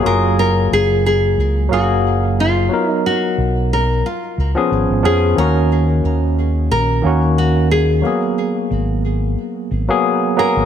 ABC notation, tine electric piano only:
X:1
M:4/4
L:1/16
Q:"Swing 16ths" 1/4=90
K:Ebm
V:1 name="Tine electric piano"
[G,B,FA]8- [G,B,FA]2 [G,B,Af]6 | [^F,=B,^D^A]8 z3 [=F,C_D_A]3 [F,CDA]2 | [E,B,DG]8- [E,B,DG]2 [E,B,DG]6 | [G,B,CA]8- [G,B,CA]3 [G,B,CA]3 [G,B,CA]2 |]